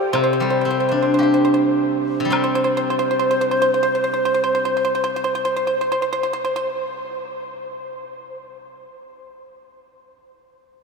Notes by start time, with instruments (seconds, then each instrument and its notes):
Already playing: pipa G4, xiao G4
0.13 guzheng C3, pipa C5, xiao C5, high woodblock
0.24 pipa C5
0.33 pipa C5
0.40 guzheng G3, pipa C5
0.50 pipa C5
0.61 guzheng C4, pipa C5
0.71 pipa C5
0.80 pipa C5
0.89 guzheng D4, pipa C5
1.02 pipa C5
1.14 pipa C5
1.19 guzheng G4, low woodblock
1.23 pipa C5
1.34 pipa C5
1.45 pipa C5
1.54 pipa C5
2.20 guzheng C3
2.25 guzheng G3
2.30 guzheng C4, pipa C5, xiao C5, high woodblock
2.44 pipa C5
2.55 pipa C5
2.64 pipa C5
2.77 pipa C5
2.90 pipa C5
2.99 pipa C5
3.11 pipa C5
3.19 pipa C5
3.31 pipa C5
3.41 pipa C5
3.51 pipa C5
3.62 pipa C5
3.74 pipa C5
3.83 pipa C5
3.95 pipa C5
4.04 pipa C5
4.14 pipa C5
4.25 pipa C5
4.34 pipa C5
4.44 pipa C5
4.55 pipa C5
4.65 pipa C5
4.77 pipa C5
4.85 pipa C5
4.95 pipa C5
5.04 pipa C5
5.16 pipa C5
5.24 pipa C5
5.35 pipa C5
5.45 pipa C5
5.56 pipa C5
5.67 pipa C5
5.81 pipa C5
5.92 pipa C5
6.02 pipa C5
6.13 pipa C5
6.23 pipa C5
6.33 pipa C5
6.45 pipa C5
6.56 pipa C5